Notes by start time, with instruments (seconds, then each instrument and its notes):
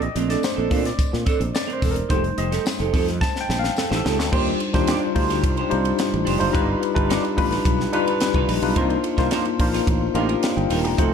0.01 tine electric piano D#5, muted clean electric guitar stroke, closed hi-hat
0.15 fretless electric bass A#1, tine electric piano A3 C4 D4, clean electric guitar C4 D4 A#4, closed hi-hat, tambourine
0.29 clean electric guitar C4 D4 A4, tine electric piano D5, snare, closed hi-hat
0.43 tine electric piano C5, muted clean electric guitar stroke, snare, tambourine
0.56 fretless electric bass A#1, clean electric guitar C4 D4 A4
0.71 fretless electric bass A#2, clean electric guitar C4 D4 A4, kick, open hi-hat, tambourine
0.85 tine electric piano D5, muted clean electric guitar stroke, snare, closed hi-hat
0.98 muted clean electric guitar stroke, muted fretless electric bass stroke, kick, closed hi-hat, tambourine
1.12 fretless electric bass A#2, muted clean electric guitar stroke, snare
1.26 clean electric guitar C4 D4 A4, kick, closed hi-hat, tambourine
1.40 fretless electric bass A#1, muted clean electric guitar stroke, closed hi-hat
1.54 tine electric piano D5, muted clean electric guitar stroke, snare, tambourine
1.67 clean electric guitar C4 D4 A#4, closed hi-hat
1.73 tine electric piano C5
1.81 fretless electric bass E1, clean electric guitar C4 D4 A4, kick, open hi-hat, tambourine
1.91 tine electric piano A#4, muted clean electric guitar stroke
1.96 closed hi-hat
2.09 fretless electric bass F1, tine electric piano G3 A3 D#4 C5, clean electric guitar D#4 G4 A4, kick, closed hi-hat, tambourine
2.24 muted clean electric guitar stroke, closed hi-hat
2.37 fretless electric bass F1, clean electric guitar D#4 G4 C5, tine electric piano D#5, closed hi-hat
2.52 clean electric guitar D#4 G4 A4, snare, closed hi-hat
2.66 muted clean electric guitar stroke, snare, tambourine
2.80 fretless electric bass F1, clean electric guitar D#4 G4 A4, closed hi-hat
2.93 fretless electric bass F2, clean electric guitar D#4 G4 A4, kick, open hi-hat, tambourine
3.07 muted clean electric guitar stroke, snare, closed hi-hat
3.21 tine electric piano A5, muted clean electric guitar stroke, kick, snare, tambourine
3.34 muted clean electric guitar stroke, snare
3.41 tine electric piano G5
3.49 fretless electric bass A#1, snare, tambourine
3.59 tine electric piano F5, muted clean electric guitar stroke
3.64 snare
3.76 tine electric piano A4, muted clean electric guitar stroke, snare, tambourine
3.90 fretless electric bass A1, clean electric guitar D#4 G4 C5, snare
3.96 tine electric piano A4
4.04 fretless electric bass C#2, clean electric guitar D#4 G4 A4, snare, tambourine
4.18 fretless electric bass D2, muted clean electric guitar stroke, snare
4.31 fretless electric bass D#2, tine electric piano G3 D4 D#4 F4 C5, clean electric guitar D4 G4 C5, kick, crash
4.47 ride
4.60 muted clean electric guitar stroke, ride
4.73 fretless electric bass D#2, tine electric piano G3 D4 D#4 F4 C5, clean electric guitar D4 G4 C5, kick, snare, ride
4.87 clean electric guitar D4 G4 D5, snare, ride
5.01 muted clean electric guitar stroke
5.14 fretless electric bass D2, tine electric piano G3 D4 D#4 F4 C5, muted clean electric guitar stroke, kick, open hi-hat, ride
5.29 clean electric guitar D4 G4 C5, snare, ride
5.43 fretless electric bass C2, muted clean electric guitar stroke, kick, hi-hat pedal, ride
5.57 clean electric guitar D4 G4 C5, ride
5.70 fretless electric bass C2, tine electric piano G3 D4 D#4 F4 C5, muted clean electric guitar stroke, ride
5.85 muted clean electric guitar stroke, ride
5.99 snare, ride
6.12 fretless electric bass A1, muted clean electric guitar stroke, ride
6.25 fretless electric bass F1, clean electric guitar D4 G4 C5, open hi-hat, ride
6.39 fretless electric bass F#1, tine electric piano G3 D4 D#4 F4 C5, muted clean electric guitar stroke, ride
6.53 fretless electric bass G1, tine electric piano G3 D4 D#4 F4 B4, clean electric guitar D#4 F4 B4, kick, hi-hat pedal, ride
6.81 muted clean electric guitar stroke, ride
6.94 fretless electric bass G1, tine electric piano G3 D4 D#4 F4 B4, clean electric guitar D#4 F4 B4, kick, ride
7.09 clean electric guitar D#4 F4 D5, snare, ride
7.23 muted clean electric guitar stroke, ride
7.37 fretless electric bass A1, tine electric piano G3 D4 D#4 F4 B4, muted clean electric guitar stroke, kick, open hi-hat, ride
7.51 clean electric guitar D#4 F4 B4, snare, ride
7.64 fretless electric bass B1, muted clean electric guitar stroke, kick, hi-hat pedal, ride
7.79 muted clean electric guitar stroke, snare
7.92 tine electric piano G3 D4 D#4 F4 B4, clean electric guitar D#4 F4 B4, ride
8.06 clean electric guitar D#4 F4 B4, ride
8.20 muted clean electric guitar stroke, snare, ride
8.34 fretless electric bass C2, clean electric guitar D#4 F4 B4, kick, ride
8.48 fretless electric bass A#1, clean electric guitar D#4 F4 B4, open hi-hat, ride
8.62 fretless electric bass B1, tine electric piano G3 D4 D#4 F4 B4, muted clean electric guitar stroke, ride
8.76 fretless electric bass C2, tine electric piano A#3 D4 D#4 F4 C5, clean electric guitar D#4 F4 A#4, kick, hi-hat pedal, ride
8.90 ride
9.03 muted clean electric guitar stroke, ride
9.17 fretless electric bass C2, tine electric piano A#3 D4 D#4 F4 C5, clean electric guitar D#4 F4 A#4, kick, snare, ride
9.31 clean electric guitar D#4 F4 C5, snare, ride
9.45 muted clean electric guitar stroke, ride
9.59 fretless electric bass A#1, tine electric piano A#3 D4 D#4 F4 C5, muted clean electric guitar stroke, kick, open hi-hat, ride
9.73 clean electric guitar D#4 F4 A#4, snare, ride
9.87 fretless electric bass A1, muted clean electric guitar stroke, kick, hi-hat pedal, ride
10.01 muted clean electric guitar stroke
10.14 fretless electric bass A1, tine electric piano A#3 D4 D#4 F4 G4, clean electric guitar D#4 F4 A#4, ride
10.29 clean electric guitar D#4 F4 A#4, ride
10.43 tine electric piano D5 F5, snare, ride
10.56 fretless electric bass G1, tine electric piano D#5 G5, muted clean electric guitar stroke, ride
10.70 fretless electric bass D#1, clean electric guitar D#4 F4 A#4, open hi-hat, ride
10.84 fretless electric bass E1, tine electric piano G5 A#5, muted clean electric guitar stroke, ride
10.98 fretless electric bass F1, tine electric piano A3 D#4 F4 F#4 C5, clean electric guitar D#4 F#4 A4, kick, hi-hat pedal, ride